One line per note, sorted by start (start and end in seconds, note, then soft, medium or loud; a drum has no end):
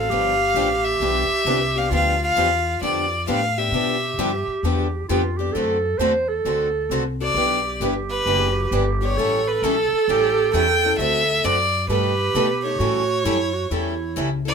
0.00 0.10 C4 soft
0.00 0.11 A4 loud
0.00 0.86 F5 loud
0.09 0.54 G1 medium
0.09 0.32 D3 medium
0.09 0.32 F3 medium
0.09 0.32 B3 medium
0.09 0.33 D4 medium
0.09 1.92 G4 loud
0.09 0.33 G4 medium
0.54 0.99 A1 medium
0.54 0.67 D3 medium
0.54 0.67 F3 medium
0.54 0.67 B3 medium
0.54 0.67 D4 medium
0.54 0.67 G4 medium
0.85 1.79 E5 loud
1.00 1.27 B1 medium
1.00 1.23 D3 medium
1.00 1.23 F3 medium
1.00 1.23 B3 medium
1.00 1.23 D4 medium
1.00 1.23 G4 medium
1.29 muted upright bass stroke soft
1.45 1.89 C2 medium
1.45 1.58 D3 medium
1.45 1.58 F3 medium
1.45 1.58 B3 medium
1.45 1.58 D4 medium
1.45 1.58 G4 medium
1.76 1.92 B3 soft
1.76 1.91 D4 soft
1.76 1.91 G4 medium
1.76 1.92 F5 medium
1.90 2.35 D2 medium
1.90 2.14 D3 medium
1.90 2.14 F3 medium
1.90 2.14 B3 medium
1.90 2.14 D4 medium
1.90 3.51 F4 medium
1.90 2.14 G4 medium
1.95 2.21 F5 loud
2.24 2.79 F5 loud
2.36 2.80 E2 medium
2.36 2.48 D3 medium
2.36 2.48 F3 medium
2.36 2.48 B3 medium
2.36 2.49 D4 medium
2.36 2.49 G4 medium
2.81 3.26 F2 medium
2.81 3.04 D3 medium
2.81 3.04 F3 medium
2.81 3.04 B3 medium
2.81 3.04 D4 medium
2.81 3.05 G4 medium
2.81 3.25 D5 medium
3.27 3.71 A2 medium
3.27 3.39 D3 medium
3.27 3.39 F3 medium
3.27 3.39 B3 medium
3.27 3.39 D4 medium
3.27 3.39 G4 medium
3.27 3.59 F5 loud
3.58 3.73 B3 medium
3.58 3.73 D4 medium
3.58 3.73 G4 medium
3.58 4.48 E5 medium
3.72 4.16 B2 medium
3.72 3.95 D3 medium
3.72 3.95 F3 medium
3.72 3.95 B3 medium
3.72 3.96 D4 medium
3.72 5.05 G4 medium
3.72 3.95 G4 medium
4.18 4.45 G2 medium
4.18 4.30 D3 medium
4.18 4.30 F3 medium
4.18 4.30 B3 medium
4.18 4.30 D4 medium
4.18 4.31 G4 medium
4.47 muted upright bass stroke soft
4.63 5.07 E2 medium
4.63 4.86 D3 medium
4.63 4.86 F3 medium
4.63 4.86 B3 medium
4.63 4.86 D4 medium
4.63 4.86 G4 medium
5.08 5.53 F2 medium
5.08 5.21 D3 medium
5.08 5.21 F3 medium
5.08 5.21 B3 medium
5.08 5.21 D4 medium
5.08 5.39 F4 medium
5.08 5.21 G4 medium
5.37 5.55 B3 soft
5.37 5.54 D4 soft
5.37 5.54 G4 medium
5.52 5.98 F#2 medium
5.52 5.77 D3 medium
5.52 5.77 A3 medium
5.52 6.00 A4 loud
5.56 5.77 C4 medium
5.56 5.77 F#4 medium
5.56 5.77 A4 medium
5.98 6.43 E2 medium
5.98 6.12 D3 medium
5.98 6.12 A3 medium
5.98 6.12 C4 medium
5.98 6.12 F#4 medium
5.98 6.12 A4 medium
5.98 6.30 C5 loud
6.29 7.19 A4 loud
6.45 6.89 D2 medium
6.45 6.67 D3 medium
6.45 6.67 A3 medium
6.45 6.67 C4 medium
6.45 6.67 F#4 medium
6.45 6.68 A4 medium
6.89 7.34 C2 medium
6.89 7.02 D3 medium
6.89 7.02 A3 medium
6.89 7.02 C4 medium
6.89 7.03 F#4 medium
6.89 7.03 A4 medium
7.21 7.36 C4 soft
7.21 7.36 F#4 medium
7.21 7.36 A4 medium
7.21 7.78 D5 loud
7.34 7.79 B1 medium
7.34 7.58 E3 medium
7.34 7.58 G3 medium
7.34 7.58 B3 medium
7.34 7.58 D4 medium
7.34 7.58 E4 medium
7.34 9.18 G4 medium
7.34 7.58 G4 medium
7.34 7.58 B4 medium
7.80 8.25 G1 medium
7.80 7.93 E3 medium
7.80 7.93 G3 medium
7.80 7.93 B3 medium
7.80 7.93 D4 medium
7.80 7.93 E4 medium
7.80 7.93 G4 medium
7.80 7.94 B4 medium
8.10 8.68 B4 loud
8.26 8.70 F#1 medium
8.26 8.49 E3 medium
8.26 8.49 G3 medium
8.26 8.48 B3 medium
8.26 8.49 D4 medium
8.26 8.49 E4 medium
8.26 8.49 G4 medium
8.26 8.49 B4 medium
8.71 9.16 G1 loud
8.71 8.83 E3 medium
8.71 8.84 G3 medium
8.71 8.84 B3 medium
8.71 8.84 D4 medium
8.71 8.84 E4 medium
8.71 8.84 G4 medium
8.71 8.84 B4 medium
9.02 9.18 B3 soft
9.02 9.18 D4 soft
9.02 9.17 G4 medium
9.02 9.49 C#5 medium
9.17 9.61 A1 medium
9.17 9.40 E3 medium
9.17 9.40 G3 medium
9.17 9.40 C#4 medium
9.17 9.40 E4 medium
9.17 10.98 A4 loud
9.17 9.40 A4 medium
9.47 9.66 B4 medium
9.62 9.89 B1 medium
9.62 9.75 E3 medium
9.62 9.75 G3 medium
9.62 9.75 C#4 medium
9.62 9.75 E4 medium
9.62 10.12 A4 loud
9.62 9.75 A4 loud
9.92 muted upright bass stroke soft
10.08 10.52 A1 medium
10.08 10.30 E3 medium
10.08 10.31 G3 medium
10.08 10.30 C#4 medium
10.08 10.31 E4 medium
10.08 10.54 G4 medium
10.08 10.31 A4 medium
10.53 10.97 E2 medium
10.53 10.65 E3 medium
10.53 10.65 G3 medium
10.53 10.66 C#4 medium
10.53 10.66 E4 medium
10.53 10.66 A4 medium
10.53 10.96 G5 loud
10.84 10.99 C#4 soft
10.84 10.99 E4 medium
10.84 10.99 A4 medium
10.98 11.42 D2 medium
10.98 11.21 D3 medium
10.98 11.21 A3 medium
10.98 11.21 C4 medium
10.98 11.21 F#4 medium
10.98 11.64 A4 medium
10.98 11.22 A4 medium
10.98 11.46 E5 loud
11.44 11.88 F#2 medium
11.44 11.56 D3 medium
11.44 11.56 A3 medium
11.44 11.56 C4 medium
11.44 11.56 F#4 medium
11.44 11.56 A4 loud
11.44 11.89 D5 loud
11.88 12.33 G2 medium
11.88 12.12 B2 medium
11.88 12.12 G3 medium
11.88 12.12 A3 medium
11.88 12.12 D#4 medium
11.88 12.80 G4 loud
11.88 12.12 A4 medium
11.88 12.60 B4 loud
11.88 12.12 B4 medium
12.34 12.79 B2 medium
12.34 12.47 B2 medium
12.34 12.47 G3 medium
12.34 12.47 A3 medium
12.34 12.47 D#4 medium
12.34 12.47 A4 loud
12.34 12.47 B4 loud
12.64 12.80 A3 soft
12.64 12.80 D#4 medium
12.64 12.80 A4 medium
12.64 14.13 C#5 medium
12.79 13.24 A2 medium
12.79 13.02 E3 medium
12.79 13.02 G3 medium
12.79 13.02 C#4 medium
12.79 13.03 E4 medium
12.79 13.26 F#4 loud
12.79 13.02 A4 medium
13.25 13.69 F#2 medium
13.25 13.37 E3 medium
13.25 13.37 G3 medium
13.25 13.37 C#4 medium
13.25 13.55 E4 medium
13.25 13.38 E4 medium
13.25 13.37 A4 medium
13.54 13.69 F#4 medium
13.69 14.15 E2 medium
13.69 13.93 E3 medium
13.69 13.93 G3 medium
13.69 13.93 C#4 medium
13.69 14.41 E4 medium
13.69 13.93 E4 medium
13.69 13.93 A4 medium
14.16 14.54 C#2 medium
14.16 14.28 E3 medium
14.16 14.28 G3 medium
14.16 14.28 C#4 medium
14.16 14.28 E4 medium
14.16 14.28 A4 medium
14.45 14.54 C#4 soft
14.45 14.54 E4 soft
14.45 14.54 A4 medium
14.45 14.54 D5 loud